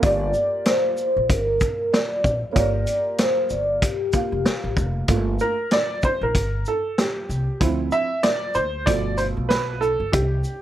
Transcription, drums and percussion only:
0.03 kick, closed hi-hat
0.34 shaker
0.65 snare, closed hi-hat
0.97 shaker
1.30 kick, closed hi-hat
1.61 kick, closed hi-hat, shaker
1.94 snare, closed hi-hat
2.24 kick, shaker
2.56 kick, closed hi-hat
2.87 closed hi-hat, shaker
3.18 snare, closed hi-hat
3.50 shaker
3.82 kick, closed hi-hat
4.13 kick, closed hi-hat, shaker
4.46 snare, closed hi-hat
4.77 kick, shaker
5.08 kick, closed hi-hat
5.39 shaker
5.71 snare, closed hi-hat
6.02 kick, shaker
6.35 kick, closed hi-hat
6.66 shaker
6.98 snare, closed hi-hat
7.30 shaker
7.61 kick, closed hi-hat
7.92 shaker
8.23 snare, closed hi-hat
8.54 shaker
8.87 kick, closed hi-hat
9.18 closed hi-hat, shaker
9.50 snare, closed hi-hat
9.82 shaker
10.13 kick, closed hi-hat
10.44 shaker

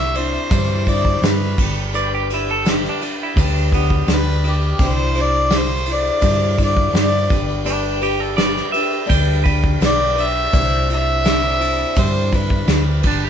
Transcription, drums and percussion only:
0.15 ride, shaker
0.33 shaker
0.51 kick, ride, shaker
0.70 shaker
0.87 kick, ride, shaker
1.05 kick, shaker
1.23 snare, ride, shaker
1.58 kick, crash, shaker
1.78 shaker
1.94 shaker
2.12 shaker
2.30 ride, shaker
2.48 shaker
2.65 snare, ride, shaker
2.84 snare, shaker
3.01 ride, shaker
3.37 kick, ride, shaker
3.56 shaker
3.72 kick, ride, shaker
3.90 kick
4.08 snare, ride, shaker
4.27 shaker
4.44 ride, shaker
4.62 shaker
4.79 kick, crash, shaker
5.15 ride, shaker
5.50 snare, ride, shaker
5.69 snare, shaker
5.86 ride, shaker
6.05 shaker
6.21 kick, ride, shaker
6.42 shaker
6.58 kick, ride, shaker
6.77 kick, shaker
6.95 snare, ride, shaker
7.30 kick, ride, shaker
7.49 shaker
7.66 ride, shaker
8.02 ride, shaker
8.38 snare, ride, shaker
8.56 snare, shaker
8.74 ride, shaker
8.93 shaker
9.10 kick, ride, shaker
9.28 shaker
9.45 kick, ride, shaker
9.64 kick, shaker
9.81 snare, ride, shaker
10.18 ride, shaker
10.53 kick, crash, shaker
10.89 ride, shaker
11.24 snare, ride, shaker
11.43 shaker
11.61 ride, shaker
11.79 shaker
11.96 kick, ride, shaker
12.14 shaker
12.33 kick, ride, shaker
12.50 kick, shaker
12.67 snare, ride, shaker
13.03 kick, crash, shaker
13.21 shaker

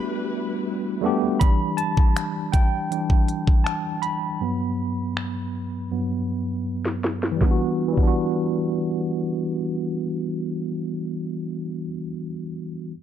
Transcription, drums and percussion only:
1.41 kick, closed hi-hat
1.78 closed hi-hat
1.97 kick
2.17 finger snap, closed hi-hat
2.53 kick, closed hi-hat
2.92 closed hi-hat
3.10 kick
3.28 closed hi-hat
3.47 kick
3.66 finger snap, closed hi-hat
4.03 closed hi-hat
5.17 finger snap
6.85 snare
7.04 snare
7.23 snare
7.41 kick, snare
7.97 kick, crash

